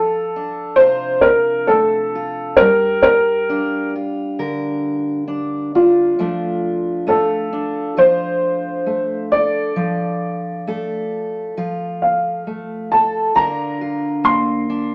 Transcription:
0.00 2.55 F3 medium
0.00 0.80 F4 medium
0.00 0.80 A4 medium
0.36 3.49 D4 soft
0.76 2.54 C3 medium
0.76 1.24 C5 medium
0.80 2.15 F4 medium
1.21 1.69 A#4 medium
1.67 2.54 A3 medium
1.67 2.61 A4 medium
2.15 2.63 F4 soft
2.57 6.19 G3 medium
2.57 3.01 A#4 loud
3.03 3.89 A#4 medium
3.49 5.27 D4 medium
3.49 3.95 F4 medium
3.95 7.07 F4 soft
4.39 6.18 D3 medium
4.39 6.13 A#4 medium
5.28 5.75 D4 medium
5.75 6.20 D4 medium
5.75 7.13 F4 medium
6.19 7.96 F3 medium
6.19 7.06 A3 medium
6.19 7.52 D4 medium
7.07 8.85 A3 medium
7.07 7.97 F4 medium
7.07 7.94 A4 medium
7.53 11.03 D4 medium
7.97 9.76 F3 medium
7.97 11.47 F4 medium
7.97 9.37 C5 medium
8.86 9.71 A3 medium
9.32 10.67 A4 medium
9.32 12.41 D5 medium
9.76 11.56 F3 medium
10.67 12.46 A3 medium
10.67 12.91 A4 medium
11.57 13.30 F3 medium
11.57 13.30 F4 medium
12.02 12.94 F5 medium
12.47 13.30 A3 medium
12.92 13.36 A4 medium
12.92 13.37 A5 medium
13.35 14.95 D3 medium
13.35 14.69 D4 medium
13.35 13.81 F4 medium
13.35 14.95 A#4 medium
13.35 14.27 A#5 medium
13.81 14.95 F4 medium
14.24 14.95 A#3 medium
14.24 14.95 C6 medium
14.70 14.95 D4 medium

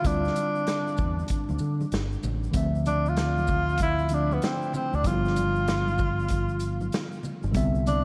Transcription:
0.01 0.28 D2 loud
0.01 2.49 D3 medium
0.01 2.50 G3 medium
0.01 2.50 F4 medium
0.01 kick loud
0.01 closed hi-hat medium
0.01 shaker medium
0.05 2.51 C4 medium
0.05 1.30 D4 medium
0.05 2.52 D4 medium
0.25 snare soft
0.25 shaker soft
0.36 closed hi-hat medium
0.36 high conga soft
0.36 shaker medium
0.36 shaker soft
0.55 shaker soft
0.67 snare medium
0.67 closed hi-hat medium
0.67 shaker soft
0.87 shaker soft
0.97 1.22 E2 medium
0.97 kick medium
0.97 low conga soft
0.97 shaker soft
1.19 shaker soft
1.28 kick medium
1.28 closed hi-hat medium
1.28 shaker medium
1.49 1.58 D2 medium
1.49 high conga medium
1.49 shaker soft
1.59 1.84 D3 medium
1.59 shaker medium
1.61 shaker medium
1.81 high conga medium
1.81 shaker soft
1.92 2.15 G1 medium
1.92 snare loud
1.92 closed hi-hat medium
1.92 shaker medium
2.12 shaker soft
2.23 2.47 A1 medium
2.23 low conga medium
2.23 shaker medium
2.23 shaker soft
2.43 shaker soft
2.51 4.38 D2 loud
2.51 4.06 D3 medium
2.51 4.07 F3 medium
2.51 4.08 A3 medium
2.51 4.08 C4 medium
2.51 kick loud
2.51 closed hi-hat medium
2.51 shaker medium
2.57 4.09 E5 medium
2.75 shaker soft
2.86 3.10 D4 medium
2.86 closed hi-hat medium
2.86 high conga soft
2.86 low conga medium
2.86 shaker medium
2.86 shaker soft
3.06 3.80 F4 loud
3.06 shaker soft
3.17 snare medium
3.17 closed hi-hat medium
3.17 shaker soft
3.38 high conga medium
3.38 shaker soft
3.47 kick medium
3.47 low conga soft
3.47 shaker medium
3.47 shaker soft
3.69 shaker soft
3.78 kick medium
3.78 closed hi-hat medium
3.78 high conga soft
3.78 shaker medium
3.82 4.15 E4 loud
3.99 shaker soft
4.09 5.01 D3 soft
4.09 5.02 F3 soft
4.09 closed hi-hat medium
4.09 shaker medium
4.11 5.04 A3 soft
4.11 5.05 C4 soft
4.11 5.05 D4 soft
4.11 4.35 D4 medium
4.11 shaker soft
4.31 4.45 B3 medium
4.31 high conga medium
4.31 shaker soft
4.42 4.74 C4 medium
4.42 snare loud
4.42 closed hi-hat medium
4.42 shaker medium
4.62 shaker soft
4.74 4.97 C4 medium
4.74 low conga medium
4.74 shaker soft
4.74 shaker medium
4.93 5.02 D2 medium
4.93 5.08 D4 medium
4.93 shaker soft
5.02 6.88 G1 medium
5.02 7.49 D3 medium
5.02 7.50 F3 medium
5.02 7.51 G3 medium
5.02 kick loud
5.02 closed hi-hat medium
5.02 shaker medium
5.06 7.51 B3 medium
5.06 5.14 E4 medium
5.06 6.93 F4 medium
5.14 7.55 F4 medium
5.25 snare soft
5.25 shaker soft
5.36 closed hi-hat medium
5.36 high conga soft
5.36 low conga medium
5.36 shaker medium
5.36 shaker soft
5.55 shaker soft
5.68 snare loud
5.68 closed hi-hat medium
5.68 shaker soft
5.88 high conga medium
5.88 shaker soft
5.98 kick medium
5.98 low conga soft
5.98 shaker medium
5.98 shaker soft
6.19 shaker soft
6.29 kick medium
6.29 closed hi-hat medium
6.29 high conga soft
6.29 shaker medium
6.49 shaker soft
6.60 closed hi-hat medium
6.60 shaker medium
6.60 shaker soft
6.81 high conga medium
6.81 shaker soft
6.92 snare loud
6.92 closed hi-hat medium
6.92 shaker medium
7.12 shaker soft
7.23 low conga medium
7.23 shaker soft
7.43 7.55 G1 medium
7.43 shaker soft
7.52 8.04 C2 loud
7.52 8.04 D3 medium
7.52 8.04 G3 medium
7.52 8.04 B3 medium
7.52 8.04 C4 medium
7.52 kick loud
7.52 closed hi-hat medium
7.52 shaker medium
7.57 8.04 E5 medium
7.75 shaker soft
7.87 8.04 D4 medium
7.87 closed hi-hat medium
7.87 high conga soft
7.87 low conga medium
7.87 shaker medium
7.87 shaker soft

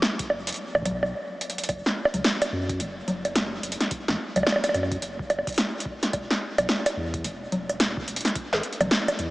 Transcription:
0.02 snare loud
0.19 kick loud
0.19 closed hi-hat medium
0.30 0.52 F#1 medium
0.30 high bongo medium
0.47 closed hi-hat medium
0.49 closed hi-hat medium
0.52 closed hi-hat soft
0.54 closed hi-hat soft
0.56 closed hi-hat soft
0.75 0.83 A1 medium
0.75 kick soft
0.75 high bongo medium
0.82 1.13 B1 loud
0.82 kick medium
0.82 closed hi-hat medium
0.82 high bongo soft
0.82 low conga medium
0.91 kick medium
1.03 high bongo medium
1.41 closed hi-hat medium
1.50 closed hi-hat medium
1.58 closed hi-hat medium
1.64 closed hi-hat medium
1.69 1.81 F#1 loud
1.69 kick loud
1.69 closed hi-hat medium
1.69 high bongo soft
1.86 snare medium
2.05 high bongo medium
2.14 2.21 C#2 medium
2.14 closed hi-hat medium
2.14 low conga medium
2.24 snare loud
2.42 closed hi-hat medium
2.42 high bongo medium
2.52 2.81 F#2 medium
2.69 kick loud
2.69 closed hi-hat medium
2.80 3.02 F#1 loud
2.80 closed hi-hat medium
3.08 3.59 F#1 medium
3.08 closed hi-hat soft
3.08 low conga medium
3.25 closed hi-hat medium
3.25 high bongo soft
3.36 snare loud
3.36 closed hi-hat medium
3.63 3.76 F#1 medium
3.63 closed hi-hat medium
3.72 closed hi-hat medium
3.81 snare medium
3.81 closed hi-hat medium
3.91 kick loud
3.91 closed hi-hat medium
4.08 4.16 A1 loud
4.08 snare medium
4.36 4.44 C#2 medium
4.36 closed hi-hat medium
4.36 high bongo soft
4.36 low conga medium
4.43 snare loud
4.43 high bongo soft
4.47 high bongo medium
4.52 high bongo medium
4.56 high bongo medium
4.64 closed hi-hat medium
4.64 high bongo medium
4.69 high bongo soft
4.74 4.96 F#2 medium
4.74 closed hi-hat soft
4.74 high bongo soft
4.83 high bongo soft
4.92 kick loud
4.92 closed hi-hat medium
5.02 5.24 F#1 medium
5.02 closed hi-hat medium
5.19 kick loud
5.30 5.42 F#1 loud
5.30 closed hi-hat soft
5.30 high bongo medium
5.39 high bongo soft
5.47 kick loud
5.47 closed hi-hat medium
5.47 closed hi-hat soft
5.49 closed hi-hat soft
5.52 closed hi-hat soft
5.54 closed hi-hat soft
5.56 snare loud
5.56 closed hi-hat soft
5.58 closed hi-hat medium
5.80 closed hi-hat medium
5.86 kick medium
6.03 snare medium
6.03 closed hi-hat medium
6.13 6.26 E1 loud
6.13 kick loud
6.13 closed hi-hat medium
6.13 high bongo soft
6.31 snare medium
6.58 6.66 B1 medium
6.58 closed hi-hat medium
6.58 high bongo medium
6.69 snare loud
6.86 closed hi-hat medium
6.86 high bongo medium
6.97 7.26 E2 medium
7.14 kick loud
7.14 closed hi-hat medium
7.24 7.46 E1 loud
7.24 closed hi-hat medium
7.52 8.03 E1 medium
7.52 closed hi-hat soft
7.52 low conga medium
7.69 closed hi-hat medium
7.69 high bongo soft
7.80 snare loud
7.80 closed hi-hat medium
7.97 kick loud
8.08 8.20 E1 medium
8.08 closed hi-hat medium
8.16 closed hi-hat medium
8.21 closed hi-hat medium
8.25 snare medium
8.25 closed hi-hat medium
8.28 closed hi-hat soft
8.35 kick loud
8.35 closed hi-hat medium
8.53 8.60 G#1 loud
8.53 snare medium
8.63 closed hi-hat soft
8.73 closed hi-hat soft
8.80 8.88 B1 medium
8.80 closed hi-hat medium
8.80 closed hi-hat soft
8.80 high bongo medium
8.80 low conga medium
8.82 low conga medium
8.86 low conga soft
8.88 low conga soft
8.89 snare loud
8.89 low conga soft
9.08 closed hi-hat medium
9.08 high bongo medium
9.19 9.30 E2 medium
9.19 closed hi-hat soft

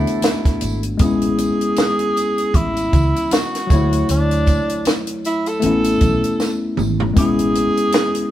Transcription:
0.00 0.96 A3 medium
0.00 0.97 B3 medium
0.00 0.98 D4 medium
0.00 0.80 E4 medium
0.00 0.99 F#4 medium
0.00 0.80 A4 medium
0.07 closed hi-hat soft
0.07 tambourine soft
0.22 snare loud
0.22 closed hi-hat loud
0.22 tambourine medium
0.22 high conga medium
0.45 kick loud
0.45 snare soft
0.45 closed hi-hat medium
0.61 0.93 G#1 medium
0.61 closed hi-hat medium
0.61 tambourine medium
0.61 high conga medium
0.83 closed hi-hat medium
0.97 1.50 A1 loud
0.97 3.65 G#3 medium
0.97 3.66 B3 medium
0.97 2.58 G#4 loud
0.97 kick loud
0.97 closed hi-hat loud
0.97 tambourine soft
0.97 muted conga medium
1.02 3.67 C#4 medium
1.02 3.68 E4 medium
1.22 closed hi-hat medium
1.38 closed hi-hat medium
1.38 tambourine soft
1.38 muted conga medium
1.61 closed hi-hat medium
1.76 snare loud
1.76 closed hi-hat medium
1.76 tambourine medium
1.76 high conga medium
1.99 closed hi-hat medium
2.16 closed hi-hat medium
2.16 tambourine soft
2.38 closed hi-hat soft
2.54 2.86 A1 loud
2.54 3.35 E4 loud
2.54 kick medium
2.54 closed hi-hat medium
2.54 muted conga soft
2.54 low conga medium
2.76 closed hi-hat medium
2.76 tambourine soft
2.93 3.11 C#2 medium
2.93 kick medium
2.93 closed hi-hat medium
2.93 tambourine soft
2.93 muted conga soft
2.93 low conga medium
3.16 closed hi-hat soft
3.16 tambourine soft
3.31 4.09 F#4 loud
3.31 snare loud
3.31 closed hi-hat medium
3.31 tambourine medium
3.31 high conga medium
3.55 snare soft
3.55 closed hi-hat medium
3.67 4.02 D2 loud
3.67 5.57 F#3 medium
3.67 5.58 A3 medium
3.67 kick loud
3.67 closed hi-hat medium
3.67 tambourine medium
3.67 high conga medium
3.71 5.61 E4 medium
3.71 5.59 C#5 medium
3.93 closed hi-hat medium
4.09 4.59 D2 loud
4.09 4.96 D4 loud
4.09 closed hi-hat loud
4.09 tambourine soft
4.09 muted conga medium
4.31 closed hi-hat soft
4.31 tambourine soft
4.47 kick medium
4.47 closed hi-hat medium
4.47 tambourine soft
4.47 muted conga medium
4.69 closed hi-hat soft
4.69 tambourine soft
4.85 snare loud
4.85 closed hi-hat medium
4.85 tambourine medium
4.85 high conga medium
5.07 closed hi-hat medium
5.24 5.50 E4 medium
5.24 closed hi-hat medium
5.24 tambourine soft
5.46 6.63 A4 loud
5.46 closed hi-hat soft
5.46 tambourine soft
5.60 5.95 A1 medium
5.60 7.12 A3 medium
5.60 7.13 B3 medium
5.60 closed hi-hat medium
5.60 low conga medium
5.64 7.14 C#4 medium
5.64 7.15 E4 medium
5.84 closed hi-hat medium
5.84 tambourine soft
6.01 6.20 B1 medium
6.01 kick medium
6.01 closed hi-hat medium
6.01 tambourine soft
6.01 muted conga soft
6.01 low conga medium
6.24 closed hi-hat soft
6.24 tambourine soft
6.40 snare medium
6.40 tambourine medium
6.40 high conga medium
6.77 7.10 G#1 medium
6.77 mid tom medium
6.77 tambourine medium
6.77 high conga medium
7.00 floor tom medium
7.13 7.66 A1 loud
7.13 8.31 G#3 medium
7.13 8.31 B3 medium
7.13 kick loud
7.13 closed hi-hat loud
7.13 muted conga medium
7.18 8.31 C#4 medium
7.18 8.31 E4 medium
7.18 8.31 G#4 loud
7.39 closed hi-hat medium
7.55 closed hi-hat medium
7.55 muted conga medium
7.77 closed hi-hat medium
7.92 snare loud
7.92 closed hi-hat medium
7.92 high conga medium
8.15 closed hi-hat medium

